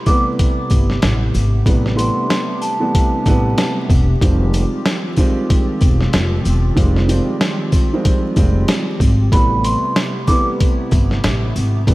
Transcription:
Already playing: C3 A3 B3 E4 G4
0.06 C3 E3 G3 A3 B3 D6, kick, shaker, sleigh bells
0.39 kick, closed hi-hat, sleigh bells
0.70 G1, kick, closed hi-hat, shaker, sleigh bells
0.90 snare
1.02 A1, snare, closed hi-hat, sleigh bells
1.35 G#1, shaker, sleigh bells
1.65 A1 C3 E3 G3 A3 B3 D4, kick, closed hi-hat, sleigh bells
1.86 snare
1.95 C3 E3 G3 A3 B3 C6, closed hi-hat, shaker, sleigh bells
2.30 snare, closed hi-hat, sleigh bells
2.61 A5, shaker, sleigh bells
2.80 C3 E3 G3 A3 B3
2.95 kick, closed hi-hat, sleigh bells
3.26 A1 C3 E3 G3 A3 B3, kick, closed hi-hat, shaker, sleigh bells
3.58 snare, closed hi-hat, sleigh bells
3.90 E1, kick, shaker, sleigh bells
4.20 F1 D#3 F3 G3 G#3 C4 F4, kick, closed hi-hat, sleigh bells
4.54 closed hi-hat, shaker, sleigh bells
4.86 snare, closed hi-hat, sleigh bells
5.16 D#3 F3 G3 G#3 C4, kick, shaker, sleigh bells
5.50 kick, closed hi-hat, sleigh bells
5.81 E1, kick, closed hi-hat, shaker, sleigh bells
6.01 snare
6.13 F1, snare, closed hi-hat, sleigh bells
6.45 E1, shaker, sleigh bells
6.75 F1 D#3 F3 G3 G#3 C4, kick, closed hi-hat, sleigh bells
6.96 snare
7.08 D#3 F3 G3 G#3 C4, closed hi-hat, shaker, sleigh bells
7.41 snare, closed hi-hat, sleigh bells
7.72 kick, shaker, sleigh bells
7.93 D#3 F3 G3 G#3 C4
8.05 kick, closed hi-hat, sleigh bells
8.36 F1 D#3 F3 G3 G#3 C4, kick, closed hi-hat, shaker, sleigh bells
8.68 snare, closed hi-hat, sleigh bells
9.00 G#1, kick, shaker, sleigh bells
9.31 A1 C3 E3 G3 A3 B3 E4 G4 B5, kick, closed hi-hat, sleigh bells
9.64 C6, closed hi-hat, shaker, sleigh bells
9.96 snare, closed hi-hat, sleigh bells
10.27 C3 E3 G3 A3 B3 D6, kick, shaker, sleigh bells
10.60 kick, closed hi-hat, sleigh bells
10.91 G1, kick, closed hi-hat, shaker, sleigh bells
11.11 snare
11.24 A1, snare, closed hi-hat, sleigh bells
11.56 G#1, shaker, sleigh bells
11.87 A1 C3 E3 G3 A3 B3 D4, kick, closed hi-hat, sleigh bells

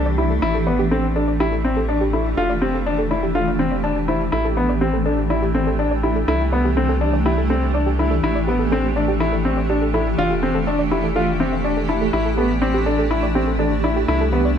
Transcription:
Already playing: C2 E3 A3 D4 G4
0.06 D5
0.18 E4 G4
0.30 A4
0.42 A1 E4
0.50 A3
0.55 A4
0.67 B3 D5
0.79 G4
0.84 D4
0.91 C4 A4
1.16 D4 A4
1.28 D5
1.40 E4 G4
1.52 A4
1.65 C4
1.77 A4
1.89 D4 D5
2.01 G4
2.13 E4 A4
2.37 F1 F4 A4
2.50 D5
2.62 C4 G4
2.74 A4
2.86 D4
2.99 A4
3.11 E4 D5
3.23 G4
3.35 F4 A4
3.59 C4
3.71 D5
3.84 D4 A5
3.96 A5
4.08 E4 C5
4.32 A1 E4 A4
4.45 A4
4.57 B3
4.69 D5
4.81 C4 G4
4.93 A4
5.06 D4 A4
5.30 E4 D5
5.42 G4
5.54 C4 A4
5.67 A4
5.79 D4
5.91 D5
6.03 E4 G4
6.16 A4
6.28 C2 E4 A4
6.52 B3 D5
6.65 G4
6.77 C4 A4
6.89 A4
7.01 D4
7.13 D5
7.26 E4 G4
7.38 A4
7.50 C4 A4
7.74 D4 D5
7.86 G4
7.99 E4 A4
8.11 A4
8.23 A1 E4
8.35 D5
8.47 B3 G4
8.59 A4
8.72 C4 A4
8.96 D4 D5
9.08 G4
9.20 E4 A4
9.33 A4
9.45 C4
9.57 D5
9.70 D4 G4
9.82 A4
9.94 E4 A4
10.18 F1 F4 D5
10.30 G4
10.43 C4 A4
10.55 A4
10.67 D4
10.79 D5
10.91 E4 G4
11.04 A4
11.16 F4 A4
11.40 C4 E5
11.52 E5
11.64 D4 A5
11.77 A4
11.89 E4 A5
12.01 A4
12.13 A1 E4 G4
12.26 A4
12.37 B3 A4
12.62 C4 D5
12.74 G4
12.86 D4 A4
12.99 A4
13.11 E4
13.23 D5
13.35 C4 G4
13.47 A4
13.59 D4 A4
13.84 E4 D5
13.96 G4
14.08 C2 E4 A4
14.21 A4
14.32 B3
14.45 D5

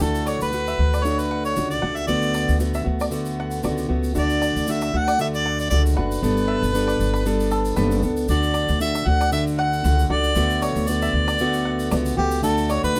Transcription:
0.00 D2 D3 A3 D4 F#4 A4, shaker
0.15 shaker
0.27 C#5 D5, shaker
0.41 D2 B4, shaker
0.52 D3 A3 D4 F#4, shaker
0.67 E5, shaker
0.79 D2
0.94 D5, shaker
1.04 D3 A3 D4 F#4 C#5, shaker
1.19 B4, shaker
1.31 F#5
1.45 C#5, shaker
1.56 C#2 D3 A3 D4 F#4, shaker
1.71 D5, shaker
1.82 C#2 A3 D4 F#4 F#5
1.96 E5, shaker
2.08 D2 D3 A3 B3 F#4 D5, shaker
2.22 shaker
2.34 D5, shaker
2.48 D2, shaker
2.59 D3 A3 B3 F#4, shaker
2.74 E5, shaker
2.84 D2 A3 B3 F#4
3.00 D5, shaker
3.10 D3 A3 B3 F#4, shaker
3.25 shaker
3.40 F#5
3.51 shaker
3.63 C#2 D3 A3 B3 F#4 D5, shaker
3.78 shaker
3.89 C#2 A3 B3 F#4
4.04 shaker
4.15 D2 D3 A3 D4 F#4, shaker
4.19 D5
4.30 shaker
4.42 D5, shaker
4.55 D2, shaker
4.67 D3 A3 D4 F#4, shaker
4.71 E5
4.81 E5, shaker
4.94 D2 A3 D4 F#4 F#5
5.08 D5, shaker
5.19 D3 A3 D4 F#4 E5, shaker
5.34 D5, shaker
5.46 F#5
5.59 D5, shaker
5.70 C#2 D3 A3 D4 F#4 D5, shaker
5.86 shaker
5.97 F#1 A3 D4 F#4 B4 F#5
6.12 shaker
6.23 G1 G3 B3 D4 A4, shaker
6.37 shaker
6.48 E5
6.63 G1, shaker
6.74 G3 B3 D4 A4, shaker
6.87 D5, shaker
7.00 G1, shaker
7.14 B4, shaker
7.26 G3 B3 D4 A4, shaker
7.40 shaker
7.51 A4, shaker
7.65 shaker
7.76 F#1 G3 B3 D4 A4 B4, shaker
7.91 shaker
8.02 C#2 B3 D4 A4, shaker
8.17 shaker
8.28 D2 D3 A3 D4 F#4 D5, shaker
8.43 shaker
8.54 D5, shaker
8.68 D2, shaker
8.80 D3 A3 D4 F#4 E5, shaker
8.95 E5, shaker
9.06 D2 A3 D4 F#4 F#5
9.21 D5, shaker
9.32 D3 A3 D4 F#4 E5, shaker
9.47 shaker
9.58 F#5
9.73 shaker
9.84 C#2 D3 A3 D4 F#4, shaker
9.99 shaker
10.10 C#2 A3 D4 F#4 D5 F#5
10.24 shaker
10.35 D2 D3 A3 B3 F#4, shaker
10.50 shaker
10.62 C#5 D5, shaker
10.75 D2, shaker
10.87 D3 A3 B3 F#4 D5, shaker
11.02 E5, shaker
11.13 D2
11.28 D5, shaker
11.39 D3 A3 B3 F#4, shaker
11.53 shaker
11.65 F#5
11.79 shaker
11.91 C#2 D3 A3 B3 F#4 D5, shaker
12.06 shaker
12.17 C#2 A3 B3 F#4 G4
12.31 shaker
12.43 D2 D3 A3 D4 F#4 A4, shaker
12.58 shaker
12.69 C#5 D5, shaker
12.83 D2 B4, shaker
12.96 D3 A3 D4, shaker

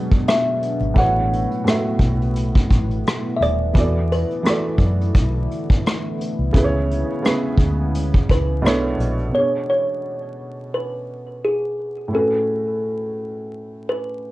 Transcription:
Already playing: B2 F#3 G#3 B3 D4 G#4 B4 C#5 D5
0.11 kick, closed hi-hat
0.28 E5, cross-stick, closed hi-hat
0.63 closed hi-hat
0.81 G#1, closed hi-hat
0.94 A1 A2 A3 E4 F#4, kick, closed hi-hat
0.98 B4 C#5 F#5
1.33 closed hi-hat
1.51 closed hi-hat
1.64 A2 A3 F#4 B4, cross-stick, closed hi-hat
1.69 E5
1.99 B1, kick, closed hi-hat
2.22 closed hi-hat
2.36 closed hi-hat
2.56 kick
2.71 A1, kick, closed hi-hat
2.91 closed hi-hat
3.07 cross-stick, closed hi-hat
3.36 D#1 E5
3.42 D5, closed hi-hat
3.73 E2 D3 E3 B3 F#4 A4, kick, closed hi-hat
3.78 D5
4.12 B4, closed hi-hat
4.30 closed hi-hat
4.43 E3 B3 F#4 A4, cross-stick, closed hi-hat
4.48 D5
4.78 F#2, kick, closed hi-hat
5.01 closed hi-hat
5.15 B1, kick, closed hi-hat
5.51 closed hi-hat
5.70 kick, closed hi-hat
5.85 cross-stick, closed hi-hat
6.20 closed hi-hat
6.39 C2
6.52 C#2 C#3 E3 G#3 B3 E4 G#4, kick, closed hi-hat
6.58 B4
6.64 C#5
6.91 closed hi-hat
7.22 C#3 B3 E4, cross-stick, closed hi-hat
7.26 G#4 B4
7.57 D2, kick, closed hi-hat
7.94 closed hi-hat
8.14 kick
8.29 C#2 B4, kick, closed hi-hat
8.62 B1 B2 B3 D4 E4, closed hi-hat
8.66 A4 C#5, cross-stick
8.98 A#1, closed hi-hat
9.19 closed hi-hat
9.29 B2 B3
9.34 D4 G#4 C#5
9.39 C#5
9.70 C#5
10.75 B4
11.45 G#4
12.08 A2 A3
12.13 C#4 F#4 A4
12.19 B4
13.89 B4

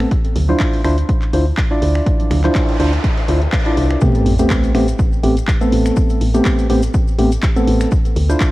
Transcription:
Already playing: A4
0.00 finger snap
0.11 kick, closed hi-hat
0.25 closed hi-hat
0.36 D2, open hi-hat, high conga, low conga
0.48 D4 E4 F4 C5, high conga
0.60 kick, clap, closed hi-hat
0.73 open hi-hat
0.84 D2 D4 E4 F4 C5, finger snap, open hi-hat
0.98 closed hi-hat
1.09 kick, closed hi-hat
1.22 clap, closed hi-hat
1.33 D2 D4 E4 F4 C5, open hi-hat
1.57 kick, clap, closed hi-hat
1.71 D4 E4 F4 D5
1.82 D2, open hi-hat
1.95 finger snap
2.06 kick, closed hi-hat, noise sweep
2.20 closed hi-hat, high conga
2.30 D2, finger snap, open hi-hat, high conga, low conga
2.44 D4 E4 F4 C5, clap, closed hi-hat, high conga
2.55 kick, clap, closed hi-hat
2.69 open hi-hat
2.80 D2 D4 E4 F4 C5, open hi-hat
2.93 closed hi-hat
3.04 kick, closed hi-hat
3.17 open hi-hat
3.28 D2 D4 E4 F4 C5, open hi-hat
3.42 closed hi-hat
3.52 kick, clap, closed hi-hat
3.66 D4 E4 F4 D5, closed hi-hat
3.77 C2, open hi-hat
3.91 finger snap, closed hi-hat
4.01 A3 B3 C4 G4, kick, sub drop, maracas
4.15 closed hi-hat, maracas
4.26 A1, open hi-hat
4.39 A3 B3 C4 G4, closed hi-hat, maracas
4.50 kick, clap, maracas
4.64 closed hi-hat, maracas
4.75 A1 A3 B3 C4 G4, finger snap, open hi-hat
4.88 closed hi-hat, maracas
4.99 kick, maracas
5.12 maracas
5.23 A1 A3 B3 C4 G4, open hi-hat
5.37 closed hi-hat, maracas
5.48 kick, clap, maracas
5.61 A3 B3 C4 A4, closed hi-hat, maracas
5.72 A1, open hi-hat
5.86 finger snap, closed hi-hat, maracas
5.96 kick, maracas
6.10 closed hi-hat, maracas
6.21 A1, open hi-hat
6.34 A3 B3 C4 G4, closed hi-hat, maracas
6.45 kick, clap, maracas
6.59 closed hi-hat, maracas
6.70 A1 A3 B3 C4 G4, open hi-hat
6.83 closed hi-hat, maracas
6.94 kick, maracas
7.08 maracas
7.18 A1 A3 B3 C4 G4, open hi-hat
7.32 closed hi-hat, maracas
7.42 kick, clap, maracas
7.56 A3 B3 C4 A4, closed hi-hat, maracas
7.67 A1, open hi-hat
7.80 finger snap, closed hi-hat, maracas
7.91 kick, maracas
8.05 closed hi-hat, maracas
8.16 D2, open hi-hat
8.29 D4 E4 F4 C5, closed hi-hat, maracas
8.40 kick, clap, maracas

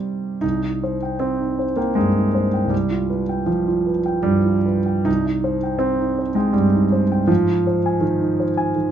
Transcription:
Already playing: C3 D#3 G3 C4
0.41 C2 D#4
0.64 D#4
0.84 C5
1.03 G5
1.20 C4
1.41 D#4
1.59 C5
1.76 A#3 G5
1.95 G2 G#3
2.16 D#4
2.34 C5
2.54 G5
2.66 C2
2.70 G3
2.91 F4
3.10 B4
3.29 G5
3.46 F3
3.68 F4
3.87 B4
4.06 G5
4.23 G2 G3
4.45 F4
4.66 B4
4.86 G5
5.05 C2 D#4
5.26 D#4
5.44 C5
5.63 G5
5.79 C4
6.00 D#4
6.18 C5
6.35 G#3 G5
6.53 G2 G3
6.74 D#4
6.92 C5
7.12 G5
7.27 G#2 F3
7.49 D#4
7.67 C5
7.86 G#5
8.01 D#3
8.22 D#4
8.40 C5
8.57 G#5
8.76 D#3

